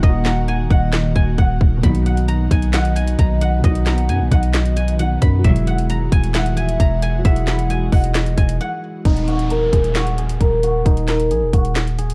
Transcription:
Already playing: D#3 A#3 F#4 F#5 G#5 A#5
0.03 D#1 A#3 D#5 F#5, kick
0.09 F#4
0.25 A#5, snare, clap
0.48 G#5
0.70 D#1 D#5 F#5, kick
0.93 snare, clap
1.15 D#1 G#5, kick
1.38 D#1 F#5, kick
1.61 D#1, kick
1.77 B2
1.83 B1 D#2 B2 F#3 B3 B5, kick, closed hi-hat
1.89 D#4
1.95 closed hi-hat
2.06 F#5, closed hi-hat
2.17 closed hi-hat
2.28 A#5, closed hi-hat
2.51 B1 G#5, kick, closed hi-hat
2.62 closed hi-hat
2.74 D#5 F#5, snare, clap, closed hi-hat
2.85 closed hi-hat
2.96 G#5, closed hi-hat
3.08 closed hi-hat
3.19 B1 A#5, kick, closed hi-hat
3.41 F#5, closed hi-hat
3.59 B2
3.64 B1 F#3 D#5 F#5, kick, closed hi-hat
3.71 D#4
3.75 closed hi-hat
3.86 A#5, snare, clap, closed hi-hat
3.98 closed hi-hat
4.09 F#2 G#5, closed hi-hat
4.20 B1
4.32 B1 D#5 F#5, kick, closed hi-hat
4.43 closed hi-hat
4.54 snare, clap, closed hi-hat
4.65 closed hi-hat
4.76 G#5, closed hi-hat
4.88 closed hi-hat
4.96 B2 F#3 F#5, closed hi-hat
5.02 D#4
5.22 F#2 B5, kick, closed hi-hat
5.39 F#3
5.44 E1 B1 G#2 E3 F#3 G#3 F#4 E5, kick, closed hi-hat
5.50 E4
5.56 closed hi-hat
5.67 F#5, closed hi-hat
5.78 closed hi-hat
5.90 A#5, closed hi-hat
6.12 D#1 G#5, kick, closed hi-hat
6.24 closed hi-hat
6.35 E5 F#5, snare, clap, closed hi-hat
6.46 closed hi-hat
6.57 G#5, closed hi-hat
6.69 closed hi-hat
6.80 E1 A#5, kick, closed hi-hat
7.02 G#5, closed hi-hat
7.19 F#3
7.25 E1 G#3 E5 F#5, kick, closed hi-hat
7.30 E4
7.36 closed hi-hat
7.47 B5, snare, clap, closed hi-hat
7.59 closed hi-hat
7.70 G#5, closed hi-hat
7.92 E1 D#5 F#5, kick, open hi-hat
8.04 closed hi-hat
8.15 snare, clap, closed hi-hat
8.26 closed hi-hat
8.37 E1 G#5, kick, closed hi-hat
8.49 closed hi-hat
8.61 F#5
9.05 D#1 D#4, kick, closed hi-hat, downlifter
9.17 closed hi-hat
9.28 F#4, closed hi-hat
9.39 closed hi-hat
9.50 A#4, closed hi-hat
9.73 D#1 G#4, kick, closed hi-hat
9.84 closed hi-hat
9.95 F#4, snare, clap, closed hi-hat
10.07 closed hi-hat
10.18 G#4, closed hi-hat
10.29 closed hi-hat
10.41 D#1 A#4, kick, closed hi-hat
10.63 F#4, closed hi-hat
10.86 D#1 D#4, kick, closed hi-hat
10.97 closed hi-hat
11.08 A#4, snare, clap, closed hi-hat
11.20 closed hi-hat
11.31 A#1 G#4, closed hi-hat
11.42 D#1
11.53 D#1 F#4, kick, closed hi-hat
11.65 closed hi-hat
11.76 snare, clap, closed hi-hat
11.87 closed hi-hat
11.98 G#4, closed hi-hat
12.10 closed hi-hat

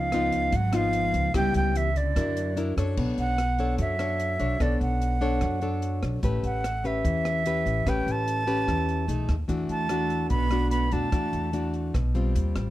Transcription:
Already playing: C#2 C#3 F3 F5
0.12 B3 D#4 F4, cross-stick, closed hi-hat
0.32 kick, closed hi-hat
0.52 G#1 G#2 F#3 F#5, kick, closed hi-hat
0.73 F3 B3 D#4 F4 F5, cross-stick, closed hi-hat
0.93 closed hi-hat
1.14 C#2, kick, closed hi-hat
1.34 C#2 C#3 G3 B3 E4 G4 G5, kick, cross-stick, closed hi-hat
1.54 C#2 G3 G5, closed hi-hat
1.75 E3 E5, closed hi-hat
1.96 D3 D5, kick, closed hi-hat
2.16 F#2 F#3 D4 E4 A#4, kick, cross-stick, closed hi-hat
2.37 closed hi-hat
2.57 D4 E4 A#4, closed hi-hat
2.77 F#2 D4 A4 C#5, kick, cross-stick, closed hi-hat
2.97 B1 B3, kick, crash
3.18 B1 F#5, closed hi-hat
3.38 cross-stick, closed hi-hat
3.58 D4 A4 C#5, closed hi-hat
3.78 F#2 F#3 E5, kick, closed hi-hat
3.99 D4 A4 C#5, cross-stick, closed hi-hat
4.20 closed hi-hat
4.39 B1 D4 A4 C#5, closed hi-hat
4.60 B1 B3 D4 A4 C#5 D5, kick, cross-stick, closed hi-hat
4.81 B1 F#5, closed hi-hat
5.02 closed hi-hat
5.21 D4 A4 C#5, closed hi-hat
5.41 F#2 F#3, kick, cross-stick, closed hi-hat
5.61 D4 A4 C#5, closed hi-hat
5.82 closed hi-hat
6.03 B1, cross-stick, closed hi-hat
6.23 A1 A3 C#4 G4 B4, kick, closed hi-hat
6.43 A1 F#5, closed hi-hat
6.64 cross-stick, closed hi-hat
6.84 C#4 G4 B4 E5, closed hi-hat
7.05 E2 E3, kick, closed hi-hat
7.25 cross-stick, closed hi-hat
7.46 C#4 G4 B4, closed hi-hat
7.66 A1, closed hi-hat
7.86 A1 A3 C#4 G4 B4 G5, kick, cross-stick, closed hi-hat
8.06 A1, closed hi-hat
8.12 A5
8.28 closed hi-hat
8.47 C#4 G4 B4, closed hi-hat
8.68 E2 E3, kick, cross-stick, closed hi-hat
8.89 closed hi-hat
9.08 B1 A3 D#4 G#4, closed hi-hat
9.29 D#2, kick, cross-stick, closed hi-hat
9.48 E2 E3 A3 D4 F#4, kick, closed hi-hat
9.69 E2 A3 A5, closed hi-hat
9.89 A3 D4 F#4, cross-stick, closed hi-hat
10.10 closed hi-hat
10.29 B1 B2 B3 B5, kick, closed hi-hat
10.51 A3 D4 F#4, cross-stick, closed hi-hat
10.71 B3 B5, closed hi-hat
10.91 E2 A3 D4 F#4 A5, closed hi-hat
11.12 E2 E3 A3 D4 F#4, kick, cross-stick, closed hi-hat
11.33 E2, closed hi-hat
11.53 A3 D4 F#4, closed hi-hat
11.74 closed hi-hat
11.94 B1 B2, kick, cross-stick, closed hi-hat
12.15 G3 C4 F4, closed hi-hat
12.35 D#2, closed hi-hat
12.55 A1, cross-stick, closed hi-hat

